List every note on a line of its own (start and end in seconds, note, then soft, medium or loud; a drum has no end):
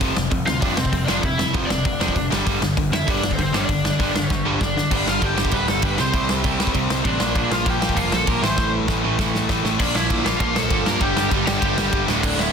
0.01 0.11 F1 loud
0.01 0.14 F2 loud
0.01 0.14 C3 loud
0.01 0.16 F3 loud
0.01 kick loud
0.01 open hi-hat medium
0.15 0.27 F1 medium
0.15 0.29 F2 medium
0.15 0.29 C3 medium
0.15 snare loud
0.30 0.42 F1 medium
0.30 0.44 F2 medium
0.30 0.45 C3 medium
0.30 kick loud
0.30 open hi-hat medium
0.45 0.58 D2 medium
0.45 0.59 F2 medium
0.45 0.59 C3 medium
0.45 0.61 F4 medium
0.45 0.60 F5 loud
0.45 snare loud
0.60 0.73 F1 medium
0.60 0.75 F2 medium
0.60 0.75 C3 medium
0.60 0.76 F3 loud
0.60 0.76 D4 medium
0.60 0.75 D5 loud
0.60 kick loud
0.60 open hi-hat medium
0.75 0.88 F1 medium
0.75 0.91 F2 medium
0.75 0.91 C3 medium
0.75 1.06 C4 medium
0.75 1.04 C5 loud
0.75 snare loud
0.85 kick medium
0.92 1.03 F1 medium
0.92 1.06 F2 medium
0.92 1.06 C3 medium
0.92 kick loud
0.92 open hi-hat medium
1.04 1.19 F1 medium
1.04 1.22 F2 medium
1.04 1.22 C3 medium
1.04 1.23 F3 medium
1.04 1.22 D4 medium
1.04 1.22 D5 medium
1.08 snare loud
1.21 1.44 F1 medium
1.21 1.37 F2 medium
1.21 1.38 C3 medium
1.21 1.53 E4 medium
1.21 1.53 E5 loud
1.21 kick loud
1.21 open hi-hat medium
1.38 1.52 F2 medium
1.38 1.52 C3 medium
1.38 snare loud
1.53 1.65 F1 medium
1.53 1.68 F2 loud
1.53 1.69 C3 loud
1.53 1.69 F3 loud
1.53 kick loud
1.53 open hi-hat soft
1.66 1.80 F1 medium
1.66 1.84 F2 medium
1.66 1.84 C3 medium
1.66 2.27 D4 medium
1.66 2.26 D5 medium
1.66 snare loud
1.85 1.95 F1 medium
1.85 1.98 F2 medium
1.85 1.99 C3 medium
1.85 kick loud
1.85 open hi-hat medium
2.00 2.10 F1 medium
2.00 2.14 F2 medium
2.00 2.14 C3 loud
2.00 2.15 F3 loud
2.00 snare loud
2.08 kick medium
2.15 2.26 F1 medium
2.15 2.29 F2 medium
2.15 2.29 C3 medium
2.15 kick loud
2.15 open hi-hat medium
2.30 2.42 G1 medium
2.30 2.44 G2 medium
2.30 2.45 D3 medium
2.30 2.45 G3 loud
2.30 snare loud
2.45 2.57 G1 medium
2.45 2.59 G2 loud
2.45 2.60 D3 loud
2.45 2.61 G3 loud
2.45 kick loud
2.45 open hi-hat medium
2.61 2.72 G1 medium
2.61 2.75 G2 medium
2.61 2.75 D3 medium
2.61 snare loud
2.77 2.88 G1 medium
2.77 2.91 G2 medium
2.77 2.91 D3 medium
2.77 kick loud
2.77 open hi-hat medium
2.90 3.02 F2 medium
2.90 3.06 G2 medium
2.90 3.06 D3 medium
2.90 3.08 E4 medium
2.90 snare loud
2.95 3.08 E5 loud
3.07 3.18 G1 medium
3.07 3.22 G2 medium
3.07 3.21 D3 loud
3.07 3.23 G3 loud
3.07 3.30 D4 medium
3.07 3.33 D5 loud
3.07 kick loud
3.07 open hi-hat medium
3.21 3.32 G1 medium
3.21 3.36 G2 medium
3.21 3.36 D3 medium
3.21 snare loud
3.31 3.39 C4 medium
3.31 3.40 C5 medium
3.31 kick medium
3.37 3.49 G1 medium
3.37 3.51 G2 medium
3.37 3.52 D3 medium
3.37 kick loud
3.37 open hi-hat medium
3.41 3.55 C4 medium
3.41 3.55 C5 medium
3.52 3.63 G1 medium
3.52 3.68 G2 medium
3.52 3.68 D3 medium
3.52 3.68 G3 medium
3.52 4.58 D4 medium
3.52 snare loud
3.56 4.27 D5 medium
3.69 3.90 G1 medium
3.69 3.83 G2 medium
3.69 3.83 D3 medium
3.69 kick loud
3.69 open hi-hat medium
3.85 3.98 G2 medium
3.85 3.99 D3 medium
3.85 snare loud
3.99 4.10 G1 medium
3.99 4.13 G2 medium
3.99 4.14 D3 loud
3.99 4.14 G3 loud
3.99 kick loud
3.99 open hi-hat medium
4.14 4.25 G1 medium
4.14 4.28 G2 medium
4.14 4.29 D3 medium
4.14 snare loud
4.27 4.41 G1 medium
4.27 4.44 G2 medium
4.27 4.44 D3 medium
4.27 4.58 C5 medium
4.27 kick loud
4.31 snare medium
4.45 4.56 G1 medium
4.45 4.60 G2 medium
4.45 4.60 D3 medium
4.45 4.60 G3 medium
4.61 4.82 G1 medium
4.61 4.75 G2 medium
4.61 4.76 D3 medium
4.61 4.90 D4 medium
4.61 4.91 D5 medium
4.61 kick loud
4.61 snare medium
4.77 4.90 G2 medium
4.77 4.91 D3 medium
4.77 snare medium
4.91 5.04 G1 loud
4.91 5.21 G2 medium
4.91 5.21 D3 loud
4.91 5.22 G3 loud
4.91 5.06 D4 medium
4.91 5.09 D5 medium
4.91 kick loud
4.91 crash loud
4.91 crash medium
5.05 5.20 G1 medium
5.05 5.22 F4 medium
5.05 5.24 F5 medium
5.05 snare loud
5.22 5.50 G1 medium
5.22 5.36 G2 medium
5.22 5.36 D3 medium
5.22 5.35 G3 loud
5.22 5.51 G4 medium
5.22 5.55 G5 loud
5.22 kick loud
5.22 crash medium
5.37 5.52 G2 medium
5.37 5.52 D3 loud
5.37 5.53 G3 loud
5.37 snare loud
5.45 kick medium
5.51 5.67 D1 medium
5.51 5.82 G2 loud
5.51 5.82 D3 loud
5.51 5.83 G3 loud
5.51 5.67 B4 medium
5.51 5.69 B5 loud
5.51 kick loud
5.51 crash medium
5.67 5.82 G1 medium
5.67 5.83 A4 medium
5.67 5.84 A5 medium
5.67 snare loud
5.82 5.97 G1 medium
5.82 5.98 G2 medium
5.82 5.98 D3 medium
5.82 5.97 G3 loud
5.82 5.97 B4 medium
5.82 5.99 B5 medium
5.82 kick loud
5.82 crash medium
5.98 6.13 C2 medium
5.98 6.13 C3 medium
5.98 6.13 G3 loud
5.98 6.12 C4 loud
5.98 6.28 C5 medium
5.98 6.28 C6 medium
5.98 snare loud
6.13 6.42 C2 medium
6.13 6.44 C3 medium
6.13 6.43 G3 loud
6.13 6.43 C4 loud
6.13 kick loud
6.13 crash medium
6.29 snare loud
6.44 6.58 C2 loud
6.44 6.59 C3 medium
6.44 6.60 G3 medium
6.44 6.60 C4 loud
6.44 kick loud
6.44 crash medium
6.59 6.73 C2 medium
6.59 6.74 C3 medium
6.59 6.74 G3 medium
6.59 6.73 C4 medium
6.59 snare loud
6.67 kick medium
6.74 6.89 C2 medium
6.74 7.04 C3 medium
6.74 7.04 G3 loud
6.74 7.03 C4 loud
6.74 kick loud
6.74 crash medium
6.89 7.04 C2 medium
6.89 snare loud
7.04 7.19 A1 medium
7.04 7.19 C3 medium
7.04 7.20 G3 medium
7.04 7.19 C4 loud
7.04 7.34 D4 medium
7.04 7.36 D5 medium
7.04 kick loud
7.04 crash medium
7.20 7.34 A#1 medium
7.20 7.35 A#2 loud
7.20 7.35 F3 loud
7.20 7.34 A#3 loud
7.20 snare loud
7.35 7.50 A#1 loud
7.35 7.67 A#2 medium
7.35 7.66 F3 loud
7.35 7.65 A#3 loud
7.35 7.50 D4 medium
7.35 7.51 D5 medium
7.35 kick loud
7.35 crash medium
7.51 7.65 A#1 medium
7.51 7.65 F4 medium
7.51 7.67 F5 medium
7.51 snare loud
7.66 7.94 A#1 medium
7.66 7.80 A#2 medium
7.66 7.80 F3 medium
7.66 7.81 A#3 loud
7.66 7.96 G4 medium
7.66 7.99 G5 medium
7.66 kick loud
7.66 crash medium
7.81 7.96 A#2 medium
7.81 7.96 F3 medium
7.81 7.95 A#3 loud
7.81 snare loud
7.89 kick medium
7.96 8.11 F1 medium
7.96 8.26 A#2 medium
7.96 8.26 F3 loud
7.96 8.26 A#3 loud
7.96 8.12 F4 medium
7.96 8.13 F5 loud
7.96 kick loud
7.96 crash medium
8.12 8.26 A#1 loud
8.12 8.27 A4 medium
8.12 8.28 A5 medium
8.12 snare loud
8.27 8.41 A#1 medium
8.27 8.42 A#2 medium
8.27 8.42 F3 medium
8.27 8.42 A#3 loud
8.27 8.42 A#4 medium
8.27 8.43 A#5 loud
8.27 kick loud
8.27 crash medium
8.42 8.57 A1 medium
8.42 8.57 A2 medium
8.42 8.56 E3 loud
8.42 8.56 A3 loud
8.42 8.72 C5 medium
8.42 8.72 C6 loud
8.42 snare loud
8.57 8.86 A1 medium
8.57 8.87 A2 loud
8.57 8.87 E3 loud
8.57 8.86 A3 loud
8.57 kick loud
8.57 snare medium
8.87 9.02 A1 medium
8.87 9.02 A2 medium
8.87 9.02 E3 medium
8.87 9.03 A3 loud
8.87 kick loud
8.87 snare medium
9.03 9.18 A1 loud
9.03 9.18 A2 loud
9.03 9.18 E3 loud
9.03 9.17 A3 medium
9.19 9.33 A1 medium
9.19 9.50 A2 medium
9.19 9.49 E3 loud
9.19 9.49 A3 loud
9.19 kick loud
9.19 snare loud
9.34 9.48 A1 medium
9.34 snare medium
9.49 9.63 A1 medium
9.49 9.64 A2 medium
9.49 9.64 E3 medium
9.49 9.65 A3 medium
9.49 kick loud
9.49 snare loud
9.64 9.79 A1 medium
9.64 9.79 A2 medium
9.64 9.79 E3 medium
9.64 9.79 A3 medium
9.64 snare medium
9.79 9.91 A#1 medium
9.79 9.95 A#2 loud
9.79 9.95 F3 loud
9.79 9.95 A#3 loud
9.79 9.95 D4 medium
9.79 9.96 D5 medium
9.79 kick loud
9.79 crash loud
9.95 10.06 A#1 medium
9.95 10.08 A#2 medium
9.95 10.09 F3 medium
9.95 10.09 A#3 medium
9.95 10.24 E4 medium
9.95 10.26 E5 medium
9.95 snare loud
10.10 10.22 A#1 medium
10.10 10.24 A#2 loud
10.10 10.24 F3 loud
10.10 10.24 A#3 loud
10.10 kick loud
10.10 ride medium
10.25 10.37 A#1 medium
10.25 10.38 A#2 medium
10.25 10.38 F3 medium
10.25 10.39 A#3 loud
10.25 10.39 F4 medium
10.25 10.39 F5 loud
10.25 snare loud
10.39 10.52 A#1 medium
10.39 10.55 A#2 loud
10.39 10.54 F3 loud
10.39 10.54 A#3 loud
10.39 10.55 F4 medium
10.39 10.56 F5 medium
10.39 kick loud
10.39 ride medium
10.55 10.67 A#1 medium
10.55 10.69 A#2 medium
10.55 10.69 F3 medium
10.55 10.70 A#3 medium
10.55 10.84 A4 medium
10.55 10.87 A5 loud
10.55 snare loud
10.70 10.82 G1 loud
10.70 10.86 A#2 medium
10.70 10.85 F3 loud
10.70 10.84 A#3 loud
10.70 kick loud
10.70 ride medium
10.85 10.98 G2 loud
10.85 11.00 A#2 medium
10.85 11.00 F3 medium
10.85 11.00 A#3 loud
10.85 11.00 A#4 medium
10.85 11.01 A#5 loud
10.85 snare loud
11.00 11.13 G1 medium
11.00 11.15 G2 loud
11.00 11.15 D3 loud
11.00 11.14 G3 loud
11.00 11.30 G4 medium
11.00 11.30 G5 loud
11.00 kick loud
11.00 ride medium
11.15 11.28 G1 medium
11.15 11.29 G2 medium
11.15 11.29 D3 medium
11.15 11.30 G3 loud
11.15 snare loud
11.30 11.43 G1 medium
11.30 11.46 G2 loud
11.30 11.46 D3 loud
11.30 11.45 G3 loud
11.30 kick loud
11.30 ride medium
11.46 11.59 G1 medium
11.46 11.60 G2 medium
11.46 11.60 D3 medium
11.46 11.61 G3 loud
11.46 12.04 G4 medium
11.46 12.04 G5 loud
11.46 snare loud
11.61 11.74 G1 medium
11.61 11.77 G2 loud
11.61 11.76 D3 loud
11.61 11.76 G3 loud
11.61 kick loud
11.61 ride medium
11.77 11.89 G1 medium
11.77 11.91 G2 medium
11.77 11.91 D3 medium
11.77 11.92 G3 loud
11.77 snare loud
11.92 12.04 G1 loud
11.92 12.06 G2 loud
11.92 12.06 D3 loud
11.92 12.07 G3 loud
11.92 kick loud
11.92 ride medium
12.06 12.19 D1 medium
12.06 12.23 D2 loud
12.06 12.21 A2 loud
12.06 12.22 D3 loud
12.06 snare loud
12.23 12.35 D1 loud
12.23 12.36 D2 loud
12.23 12.36 A2 loud
12.23 12.37 D3 loud
12.23 12.38 D4 medium
12.23 12.40 D5 loud
12.23 kick loud
12.23 crash loud
12.36 12.49 D1 medium
12.36 12.52 D2 medium
12.36 12.51 A2 medium
12.36 12.52 D3 loud
12.36 12.52 E4 medium
12.36 12.52 E5 loud
12.36 snare loud